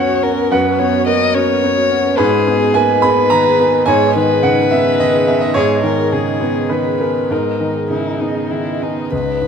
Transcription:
0.00 0.47 F#2 medium
0.00 0.54 B3 medium
0.00 2.20 B3 medium
0.00 0.23 C#4 medium
0.00 2.16 C#4 medium
0.00 2.20 F#4 medium
0.00 0.24 C#5 medium
0.00 0.47 F#5 medium
0.00 0.54 G#5 medium
0.08 0.17 F#4 medium
0.23 0.68 C#4 soft
0.23 0.53 A#4 medium
0.23 0.32 F#5 medium
0.37 0.46 B4 medium
0.51 2.15 F#2 medium
0.51 0.59 F#4 medium
0.51 0.80 B4 medium
0.51 1.04 F#5 medium
0.65 0.74 B4 medium
0.79 1.25 B3 medium
0.79 1.06 C#5 medium
0.79 0.88 F#5 medium
0.93 1.02 F#4 medium
1.06 1.35 A#3 medium
1.06 1.86 A#4 medium
1.06 1.16 C#5 medium
1.06 1.35 D#5 medium
1.22 1.30 C#5 medium
1.34 1.79 C#4 soft
1.34 1.43 F#4 loud
1.34 2.20 C#5 medium
1.49 1.58 B4 medium
1.63 2.08 B3 medium
1.63 1.71 C#5 medium
1.77 1.85 F#4 medium
1.91 2.19 C#4 medium
1.91 2.00 F#5 medium
2.06 2.14 B4 medium
2.18 3.83 G#2 medium
2.18 7.30 D#4 medium
2.18 2.76 G#4 medium
2.18 2.28 G#4 loud
2.18 7.30 G#4 medium
2.18 2.71 B4 loud
2.18 7.30 D#5 medium
2.33 2.42 B4 medium
2.47 2.92 B3 medium
2.47 2.56 G#5 medium
2.61 2.69 G#4 loud
2.74 3.03 A#3 medium
2.74 3.87 B4 medium
2.74 2.84 D#5 medium
2.74 3.01 G#5 loud
2.90 2.98 D#5 medium
3.02 3.48 B3 medium
3.02 3.12 G#4 loud
3.02 3.29 B5 loud
3.17 3.26 B4 medium
3.30 3.77 D#3 medium
3.30 3.83 A#5 loud
3.45 3.54 G#4 loud
3.59 4.04 B3 medium
3.59 3.68 G#5 medium
3.74 3.82 B4 medium
3.86 5.52 G#2 medium
3.86 3.96 G#4 loud
3.86 4.15 C#5 medium
3.86 4.39 G#5 loud
4.02 4.10 B4 medium
4.15 4.61 D#3 medium
4.15 5.53 B4 loud
4.15 4.24 G#5 medium
4.30 4.38 G#4 loud
4.43 4.72 C#3 medium
4.43 4.52 D#5 medium
4.43 4.69 F#5 loud
4.71 5.17 B3 medium
4.71 4.80 G#4 medium
4.71 4.98 E5 loud
4.99 5.45 D#3 medium
4.99 5.08 D#5 medium
4.99 5.26 D#5 medium
5.13 5.22 G#4 medium
5.27 5.73 B3 soft
5.27 5.41 E5 medium
5.27 5.36 G#5 medium
5.41 5.50 B4 medium
5.41 5.54 D#5 medium
5.54 7.26 G#2 medium
5.54 5.64 G#4 medium
5.54 5.83 G#4 medium
5.54 6.66 C#5 loud
5.69 5.78 B4 medium
5.83 6.30 D#3 medium
5.83 6.14 A#4 medium
5.83 5.93 G#5 medium
5.98 6.07 G#4 medium
6.12 6.42 C#3 soft
6.12 6.74 G#4 medium
6.12 6.22 D#5 medium
6.41 6.88 B3 soft
6.41 6.50 G#4 medium
6.56 6.65 B4 soft
6.69 7.18 D#3 soft
6.69 6.98 B4 medium
6.69 7.33 B4 medium
6.84 6.94 G#4 medium
6.99 7.48 B3 soft
6.99 7.28 A#4 medium
6.99 7.09 G#5 soft
7.15 7.24 B4 soft
7.29 9.08 G#2 medium
7.29 9.08 D#4 medium
7.29 7.85 D#4 medium
7.29 7.39 G#4 medium
7.29 9.08 G#4 medium
7.29 7.87 A#4 medium
7.29 9.08 D#5 medium
7.44 7.54 B4 soft
7.59 8.08 D#3 soft
7.59 7.69 G#5 soft
7.75 7.84 G#4 medium
7.90 8.20 C#3 soft
7.90 8.22 E4 medium
7.90 8.77 G#4 soft
7.90 8.00 D#5 soft
8.05 8.15 D#5 soft
8.20 8.69 B3 soft
8.20 8.53 D#4 soft
8.20 8.29 G#4 medium
8.36 8.45 B4 soft
8.51 9.00 D#3 soft
8.51 8.84 E4 medium
8.51 8.61 D#5 soft
8.66 8.76 G#4 medium
8.81 9.12 B3 soft
8.81 9.12 D#4 soft
8.81 8.91 G#5 soft
8.97 9.06 B4 soft
9.11 9.47 C#2 soft
9.11 9.20 C#4 medium
9.11 9.47 C#4 soft
9.11 9.47 G#4 medium
9.11 9.47 B4 medium
9.11 9.47 E5 medium
9.26 9.35 C#5 soft
9.41 9.47 G#2 soft
9.41 9.47 E4 soft

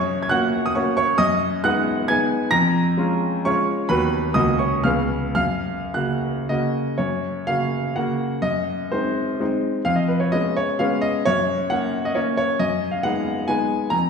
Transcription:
0.00 0.29 F#2 medium
0.00 0.21 C#5 medium
0.00 0.22 C#6 loud
0.23 0.30 G#6 medium
0.29 0.73 A#3 medium
0.29 0.73 C#4 medium
0.29 0.74 F#4 medium
0.29 0.64 F#5 medium
0.29 0.65 F#6 loud
0.66 0.77 D#6 medium
0.75 1.16 A#3 medium
0.75 1.16 C#4 medium
0.75 1.16 F#4 medium
0.75 0.96 C#5 medium
0.75 0.95 C#6 medium
0.97 1.18 C#5 medium
0.97 1.19 C#6 loud
1.18 1.63 F#2 medium
1.18 1.61 D#5 medium
1.18 1.64 D#6 loud
1.64 2.06 G#3 medium
1.64 2.07 B3 medium
1.64 2.07 D#4 medium
1.64 2.08 F#5 medium
1.64 2.10 F#6 loud
2.08 2.49 G#3 medium
2.08 2.49 B3 medium
2.08 2.49 D#4 medium
2.08 2.50 G#5 medium
2.08 2.52 G#6 loud
2.51 2.97 F2 medium
2.51 3.42 A#5 medium
2.51 3.46 A#6 loud
2.97 3.42 G#3 medium
2.97 3.42 C#4 medium
2.97 3.42 F4 medium
3.45 3.86 G#3 medium
3.45 3.86 C#4 medium
3.45 3.87 F4 medium
3.45 3.87 C#5 medium
3.45 3.90 C#6 loud
3.89 4.35 D#2 medium
3.89 4.32 F#3 medium
3.89 4.32 B3 medium
3.89 4.32 F#4 medium
3.89 4.33 B4 medium
3.89 4.36 B5 loud
4.34 4.83 C#2 medium
4.34 4.81 F#3 medium
4.34 4.81 A#3 medium
4.34 4.81 F#4 medium
4.34 4.58 D#5 medium
4.34 4.60 D#6 loud
4.59 4.83 C#5 medium
4.59 4.84 C#6 medium
4.84 5.35 C#2 medium
4.84 5.32 C#3 medium
4.84 5.33 B3 soft
4.84 5.33 G#4 soft
4.84 5.33 F5 medium
4.84 5.33 F6 loud
5.35 5.92 F#2 medium
5.35 5.89 F5 medium
5.35 5.93 F6 loud
5.94 6.45 C#3 soft
5.94 6.46 A#3 soft
5.94 6.46 F#4 medium
5.94 6.46 F#5 medium
5.94 6.49 F#6 medium
6.49 6.95 C#3 medium
6.49 6.95 A#3 medium
6.49 6.96 F#4 medium
6.49 6.99 D#5 medium
6.98 7.46 F#2 medium
6.98 7.46 C#5 medium
7.47 7.92 C#3 medium
7.47 7.92 A#3 soft
7.47 7.93 F#4 soft
7.47 7.96 F5 loud
7.96 8.39 C#3 medium
7.96 8.39 A#3 medium
7.96 8.39 F#4 medium
7.96 8.42 F#5 medium
8.42 8.90 F#2 medium
8.42 8.91 D#5 medium
8.92 9.37 G#3 soft
8.92 9.38 C4 soft
8.92 9.38 D#4 soft
8.92 9.41 C5 medium
9.40 9.81 G#3 medium
9.40 9.81 C4 medium
9.40 9.82 D#4 medium
9.85 10.30 F2 medium
9.85 9.96 F5 loud
9.96 10.07 D#5 medium
10.08 10.19 B4 medium
10.20 10.32 C#5 medium
10.32 10.76 G#3 soft
10.32 10.76 B3 soft
10.32 10.77 C#4 medium
10.32 10.56 D#5 loud
10.57 10.80 C#5 medium
10.79 11.21 G#3 medium
10.79 11.21 B3 medium
10.79 11.21 C#4 medium
10.79 11.02 F5 medium
11.02 11.24 D#5 loud
11.25 11.70 F#2 medium
11.25 11.71 C#5 loud
11.70 12.13 A#3 medium
11.70 12.13 C#4 medium
11.70 12.05 F#5 loud
12.05 12.16 D#5 medium
12.15 12.55 A#3 medium
12.15 12.55 C#4 medium
12.15 12.36 C#5 medium
12.37 12.59 C#5 medium
12.59 13.02 F#2 medium
12.59 12.92 D#5 loud
12.91 13.03 F5 medium
13.03 13.45 G#3 medium
13.03 13.45 B3 medium
13.03 13.46 D#4 medium
13.03 13.49 F#5 loud
13.48 13.89 G#3 medium
13.48 13.89 B3 medium
13.48 13.89 D#4 medium
13.48 13.92 G#5 loud
13.90 14.10 F2 medium
13.90 14.10 A#5 loud

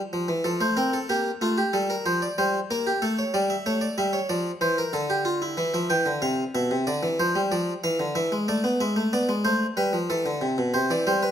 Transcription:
0.13 0.28 F3 medium
0.28 0.44 E3 medium
0.44 0.60 F3 medium
0.44 0.60 A4 medium
0.61 0.76 A3 medium
0.61 0.76 C5 medium
0.77 0.97 C4 medium
0.77 0.92 A#4 medium
0.93 1.09 A4 medium
1.09 1.29 A#3 medium
1.09 1.29 G4 medium
1.41 1.61 A3 medium
1.41 1.57 F4 medium
1.58 1.73 G4 medium
1.73 1.93 G3 medium
1.73 1.89 A4 medium
1.90 2.05 A#4 medium
2.06 2.25 F3 medium
2.06 2.21 C5 medium
2.22 2.37 D5 medium
2.38 2.58 G3 medium
2.38 2.58 C5 medium
2.71 2.90 A#3 medium
2.71 2.86 A#4 medium
2.87 3.02 G4 medium
3.02 3.22 A3 medium
3.02 3.17 A4 medium
3.19 3.34 C#5 medium
3.34 3.54 G3 medium
3.34 3.50 D5 medium
3.50 3.65 E5 medium
3.66 3.86 A3 medium
3.66 3.82 C#5 medium
3.81 3.97 D5 medium
3.98 4.18 G3 medium
3.98 4.13 E5 medium
4.13 4.29 C#5 medium
4.29 4.49 F3 medium
4.29 4.49 D5 medium
4.61 4.81 E3 medium
4.61 4.77 C5 medium
4.78 4.93 A#4 medium
4.93 5.56 D3 medium
4.93 5.09 A4 medium
5.10 5.25 G4 medium
5.25 5.41 F4 medium
5.42 5.57 E4 medium
5.57 5.73 E3 medium
5.57 5.73 E4 medium
5.74 5.89 F3 medium
5.74 5.90 E5 medium
5.90 6.05 E3 medium
5.90 6.10 G5 medium
6.06 6.22 D3 medium
6.22 6.42 C3 medium
6.22 6.42 F5 medium
6.55 6.70 B2 medium
6.55 6.75 E5 loud
6.71 6.86 C3 medium
6.87 7.03 D3 medium
6.87 7.07 D5 loud
7.03 7.18 E3 medium
7.20 7.35 F3 medium
7.20 7.39 C5 medium
7.36 7.51 G3 medium
7.52 7.71 F3 medium
7.52 7.71 D5 medium
7.84 7.99 E3 medium
7.84 8.04 F5 loud
8.00 8.15 D3 medium
8.15 8.31 E3 medium
8.15 8.35 E5 loud
8.32 8.48 G#3 medium
8.48 8.64 A3 medium
8.48 8.68 D5 medium
8.64 8.80 B3 medium
8.80 8.96 G#3 medium
8.80 9.00 E5 medium
8.96 9.12 A3 medium
9.13 9.29 B3 medium
9.13 9.33 D5 medium
9.29 9.44 G#3 medium
9.45 9.65 A3 medium
9.45 9.65 C5 medium
9.77 9.93 G3 medium
9.77 9.97 B4 medium
9.93 10.09 F3 medium
10.10 10.26 E3 medium
10.10 10.73 A4 medium
10.26 10.42 D3 medium
10.41 10.58 C3 medium
10.58 10.74 B2 medium
10.74 10.90 C3 medium
10.74 10.90 C5 medium
10.90 11.06 E3 medium
10.90 11.07 D5 medium
11.07 11.27 G3 medium
11.07 11.23 C5 medium
11.23 11.31 B4 medium

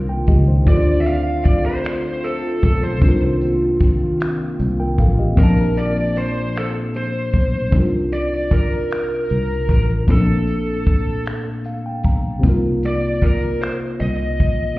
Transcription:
0.00 0.25 C2 medium
0.00 0.61 C3 medium
0.00 0.65 D#3 medium
0.00 0.63 A#3 medium
0.00 0.62 C4 medium
0.00 0.63 C4 medium
0.00 0.64 D4 medium
0.00 0.49 D#4 medium
0.00 0.66 F4 medium
0.00 0.10 A#4 medium
0.09 0.28 A#4 soft
0.09 0.27 G5 medium
0.27 0.64 C#2 medium
0.27 0.47 G4 medium
0.27 0.46 D#5 medium
0.27 kick medium
0.27 closed hi-hat medium
0.48 0.85 D#4 soft
0.48 0.70 C5 soft
0.61 2.95 D3 medium
0.61 2.97 D4 medium
0.66 2.59 D2 loud
0.66 3.00 D3 medium
0.66 3.00 A3 medium
0.66 3.00 C4 medium
0.66 2.98 F4 medium
0.66 5.34 F4 medium
0.66 2.99 A4 medium
0.66 1.01 D5 medium
0.66 kick loud
0.66 closed hi-hat medium
0.71 3.00 C5 medium
1.00 1.07 E5 medium
1.06 1.43 F5 medium
1.06 closed hi-hat medium
1.44 1.65 D5 loud
1.44 kick medium
1.44 closed hi-hat medium
1.66 2.26 C5 medium
1.85 finger snap loud
1.85 closed hi-hat medium
2.24 2.63 A4 medium
2.24 closed hi-hat soft
2.62 2.99 B1 medium
2.62 2.82 A4 medium
2.62 kick medium
2.62 closed hi-hat soft
2.83 3.19 C5 medium
2.98 5.31 C3 medium
2.98 5.32 C4 medium
2.98 kick loud
2.98 closed hi-hat medium
3.02 4.55 C2 medium
3.02 5.35 D#3 medium
3.02 7.69 A#3 medium
3.02 7.69 C4 medium
3.02 5.33 D4 medium
3.02 5.34 D#4 medium
3.07 5.36 F4 medium
3.07 4.21 A#4 medium
3.41 closed hi-hat soft
3.80 kick medium
3.80 closed hi-hat medium
4.20 finger snap loud
4.20 closed hi-hat medium
4.60 4.95 C2 medium
4.60 closed hi-hat soft
4.80 4.98 A#4 medium
4.80 4.98 G5 medium
4.98 5.34 A1 medium
4.98 5.18 A4 medium
4.98 5.18 F5 medium
4.98 kick medium
4.98 closed hi-hat soft
5.19 5.56 G4 medium
5.19 5.56 D#5 medium
5.33 7.66 A#2 medium
5.33 7.68 A#3 medium
5.37 7.30 A#1 loud
5.37 7.71 A#2 medium
5.37 7.71 F3 medium
5.37 7.69 C4 medium
5.37 7.70 D4 medium
5.37 5.79 A#4 medium
5.37 kick loud
5.37 closed hi-hat medium
5.43 7.72 A5 medium
5.77 6.17 D5 medium
5.77 closed hi-hat medium
6.16 6.57 C5 loud
6.16 closed hi-hat medium
6.56 6.68 A4 medium
6.56 finger snap loud
6.56 closed hi-hat medium
6.94 7.70 C5 medium
6.94 closed hi-hat soft
7.33 7.69 B1 medium
7.33 kick medium
7.33 closed hi-hat medium
7.69 10.02 C3 medium
7.69 10.03 C4 soft
7.69 10.04 D4 soft
7.69 kick loud
7.69 closed hi-hat medium
7.73 9.26 C2 medium
7.73 10.05 D#4 soft
7.77 10.06 F4 soft
7.77 10.07 A#4 medium
8.12 8.49 D5 medium
8.12 closed hi-hat medium
8.51 9.70 A#4 medium
8.51 kick medium
8.51 closed hi-hat medium
8.91 finger snap loud
8.91 closed hi-hat medium
9.29 9.66 C2 medium
9.29 closed hi-hat soft
9.69 10.05 A1 medium
9.69 9.82 A#4 medium
9.69 kick medium
9.69 closed hi-hat soft
10.04 12.37 A#2 medium
10.04 12.39 A#3 medium
10.04 kick medium
10.04 closed hi-hat medium
10.09 12.00 A#1 medium
10.09 12.40 C4 medium
10.09 12.41 D4 medium
10.09 11.23 A4 medium
10.14 12.42 A3 medium
10.47 closed hi-hat medium
10.86 kick medium
10.86 closed hi-hat soft
11.26 finger snap loud
11.26 closed hi-hat medium
11.64 11.84 F5 medium
11.64 closed hi-hat soft
11.86 12.04 G5 medium
12.04 12.40 B1 medium
12.04 12.41 A#5 medium
12.04 kick medium
12.04 closed hi-hat soft
12.39 14.73 C3 medium
12.39 14.74 C4 medium
12.43 13.97 C2 medium
12.43 14.75 A#3 medium
12.43 14.76 D#4 medium
12.43 kick medium
12.43 closed hi-hat medium
12.47 14.77 F4 medium
12.47 14.78 A#4 medium
12.83 13.25 D5 medium
12.83 closed hi-hat medium
13.21 13.59 A#4 medium
13.21 kick medium
13.21 closed hi-hat medium
13.61 13.72 C5 medium
13.61 finger snap loud
13.61 closed hi-hat medium
14.00 14.41 C2 medium
14.00 14.77 D#5 loud
14.00 closed hi-hat soft
14.40 14.75 A1 medium
14.40 kick medium
14.40 closed hi-hat soft
14.74 14.79 A#2 medium

